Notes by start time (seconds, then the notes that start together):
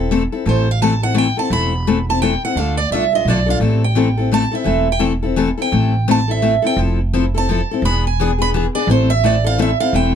Already playing: E1 E4 G5
0.00 C4
0.11 E3 A3 C4 E4 A4
0.32 C4 E4 A4
0.45 A1 E3 A3 C4 E4 A4 C5
0.71 F5
0.82 E3 A3 C4 E4 A4 A5
1.02 C4 E4 A4 F#5
1.14 E3 A3 C4 E4 A4 G5
1.37 C4 E4 A4 A5
1.50 E1 E3 A3 C4 E4 A4 B5
1.87 E3 A3 C4 E4 A4
2.09 C4 E4 A4 A5
2.22 E3 A3 C4 E4 A4 G5
2.45 C4 E4 A4 F#5
2.56 D2 D3 A3 D4 F4 A4 F5
2.77 D5
2.91 C2 D3 A3 D4 F4 A4 E5
3.13 D4 F4 A4 D#5
3.25 B1 D3 A3 D4 F4 A4
3.30 D5
3.46 D4 F4 A4
3.50 F5
3.60 A1 E3 A3 C4 E4 A4
3.84 G5
3.95 E3 A3 C4 E4 A4
4.17 C4 E4 A4
4.32 E3 A3 C4 E4 A4 A5
4.51 C4 E4 A4 E5
4.64 E1 E3 A3 C4 E4 A4
4.92 G5
4.99 E3 A3 C4 E4 A4
5.23 C4 E4 A4
5.36 E3 A3 C4 E4 A4
5.58 C4 E4 A4
5.62 G5
5.72 A1 E3 A3 C4 E4 A4
6.08 E3 A3 C4 E4 A4 A5
6.28 C4 E4 A4 E5
6.42 E3 A3 C4 E4 A4
6.62 C4 E4 A4
6.67 G5
6.76 F1 F3 C4 E4 A4
7.13 F3 C4 E4 A4
7.34 C4 E4 A4 A5
7.49 F3 C4 E4 A4
7.71 C4 E4 A4
7.82 E1 E3 B3 D4 G#4 B5
8.07 G#5
8.20 E3 B3 D4 G#4
8.38 B3 D4 G#4 B5
8.54 E3 B3 D4 G#4
8.75 B3 D4 G#4 D5
8.87 A1 E3 A3 C4 E4 A4 C5
9.10 E5
9.24 E3 A3 C4 E4 A4 D5
9.44 C4 E4 A4 F5
9.58 E3 A3 C4 E4 A4 E5
9.80 C4 E4 A4 F5
9.93 E1 E3 A3 C4 E4 A4 G5